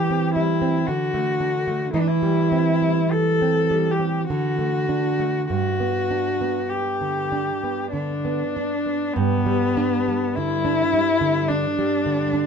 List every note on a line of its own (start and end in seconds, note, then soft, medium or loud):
0.00 0.84 E3 medium
0.00 0.35 G3 soft
0.00 0.34 G4 medium
0.10 0.52 C4 soft
0.35 0.78 G3 soft
0.35 0.88 E4 medium
0.62 0.88 C4 soft
0.87 1.91 D3 soft
0.87 1.92 F#4 medium
1.14 1.56 A3 soft
1.40 1.83 D4 soft
1.67 1.94 A3 soft
1.93 4.25 E3 medium
1.93 2.02 E4 medium
2.00 2.09 D4 medium
2.07 3.14 E4 medium
2.22 2.70 G3 soft
2.52 3.00 C4 soft
2.82 3.70 G3 soft
3.12 3.92 A4 medium
3.42 3.88 C4 soft
3.71 4.17 G3 soft
3.91 4.29 G4 medium
4.00 4.29 C4 soft
4.29 5.47 D3 soft
4.29 5.48 F#4 medium
4.59 5.07 A3 soft
4.89 5.38 D4 soft
5.19 5.50 A3 soft
5.50 9.10 G2 soft
5.50 6.71 F#4 medium
5.80 6.28 B3 soft
6.11 6.59 D4 soft
6.41 7.38 B3 soft
6.70 7.92 G4 medium
7.01 7.50 D3 soft
7.32 7.81 D4 soft
7.64 8.12 B3 soft
7.93 8.42 D3 soft
7.93 9.16 D4 medium
8.25 8.73 B3 soft
8.57 9.04 D4 soft
8.86 9.15 B3 soft
9.14 12.46 G2 medium
9.14 10.37 B3 medium
9.46 9.95 G3 medium
9.77 10.25 D4 medium
10.08 10.54 G3 medium
10.36 10.82 D3 soft
10.36 11.50 E4 medium
10.65 11.10 D4 soft
10.93 11.38 G3 soft
11.21 11.66 D3 soft
11.48 12.46 D4 medium
11.48 11.94 D4 medium
11.79 12.22 G3 soft
12.06 12.46 D3 soft
12.34 12.46 D4 medium